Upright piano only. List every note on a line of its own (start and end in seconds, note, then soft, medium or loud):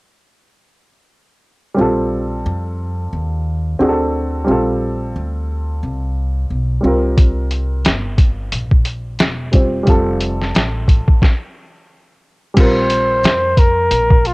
1.74 3.75 G3 medium
1.74 3.76 C4 medium
1.79 3.77 F4 medium
1.79 3.78 A4 medium
3.79 4.45 C4 medium
3.79 4.48 D4 medium
3.79 4.48 F#4 medium
3.79 3.89 G#4 medium
3.89 4.49 A4 medium
4.44 6.78 G3 medium
4.44 6.79 C4 medium
4.49 6.80 F4 medium
4.49 6.81 A4 medium
6.81 9.48 G3 medium
6.81 9.49 C4 medium
6.85 9.50 F4 medium
6.85 9.51 A#4 medium
9.52 9.82 G3 soft
9.52 9.84 C4 soft
9.52 9.86 F4 soft
9.52 9.88 C5 medium
9.83 11.17 G3 medium
9.83 11.19 C4 medium
9.88 11.20 F4 medium
9.88 11.21 A4 medium
12.54 14.34 G3 medium
12.54 14.34 C4 medium
12.54 14.34 F4 medium
12.60 14.34 A#4 medium